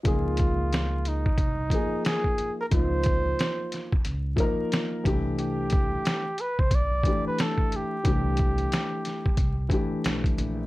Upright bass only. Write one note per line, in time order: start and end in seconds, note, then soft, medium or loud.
0.05 1.34 C#2 medium
1.37 1.67 C2 medium
2.72 3.30 C#2 loud
3.92 4.04 D#2 medium
4.06 4.35 C#2 medium
5.05 5.93 C2 medium
6.59 6.70 C2 medium
6.71 7.00 B1 medium
8.05 8.63 C2 loud
9.25 9.37 D2 medium
9.38 9.67 C2 medium
10.05 10.34 B1 medium
10.38 10.67 A#1 medium